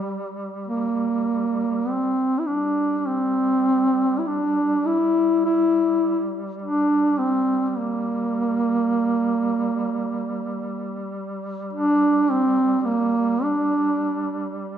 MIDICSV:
0, 0, Header, 1, 3, 480
1, 0, Start_track
1, 0, Tempo, 1190476
1, 996, Time_signature, 4, 2, 24, 8
1, 2429, Tempo, 1145038
1, 6099, End_track
2, 0, Start_track
2, 0, Title_t, "Duduk"
2, 0, Program_c, 0, 69
2, 0, Note_on_c, 0, 55, 85
2, 202, Note_off_c, 0, 55, 0
2, 270, Note_on_c, 0, 58, 74
2, 755, Note_on_c, 0, 60, 76
2, 761, Note_off_c, 0, 58, 0
2, 965, Note_on_c, 0, 64, 54
2, 971, Note_off_c, 0, 60, 0
2, 994, Note_on_c, 0, 62, 91
2, 1000, Note_off_c, 0, 64, 0
2, 1203, Note_off_c, 0, 62, 0
2, 1203, Note_on_c, 0, 62, 55
2, 1239, Note_on_c, 0, 60, 91
2, 1245, Note_off_c, 0, 62, 0
2, 1688, Note_on_c, 0, 64, 43
2, 1694, Note_off_c, 0, 60, 0
2, 1719, Note_on_c, 0, 62, 82
2, 1725, Note_off_c, 0, 64, 0
2, 1958, Note_on_c, 0, 64, 104
2, 1964, Note_off_c, 0, 62, 0
2, 2194, Note_off_c, 0, 64, 0
2, 2197, Note_on_c, 0, 64, 92
2, 2546, Note_off_c, 0, 64, 0
2, 2678, Note_on_c, 0, 62, 93
2, 2915, Note_on_c, 0, 60, 92
2, 2922, Note_off_c, 0, 62, 0
2, 3124, Note_off_c, 0, 60, 0
2, 3124, Note_on_c, 0, 60, 50
2, 3160, Note_on_c, 0, 58, 85
2, 3166, Note_off_c, 0, 60, 0
2, 4589, Note_off_c, 0, 58, 0
2, 4820, Note_on_c, 0, 62, 106
2, 5062, Note_on_c, 0, 60, 104
2, 5069, Note_off_c, 0, 62, 0
2, 5273, Note_off_c, 0, 60, 0
2, 5273, Note_on_c, 0, 60, 62
2, 5290, Note_on_c, 0, 58, 93
2, 5296, Note_off_c, 0, 60, 0
2, 5532, Note_on_c, 0, 62, 86
2, 5539, Note_off_c, 0, 58, 0
2, 6019, Note_off_c, 0, 62, 0
2, 6099, End_track
3, 0, Start_track
3, 0, Title_t, "Duduk"
3, 0, Program_c, 1, 69
3, 0, Note_on_c, 1, 55, 38
3, 926, Note_off_c, 1, 55, 0
3, 995, Note_on_c, 1, 55, 47
3, 6099, Note_off_c, 1, 55, 0
3, 6099, End_track
0, 0, End_of_file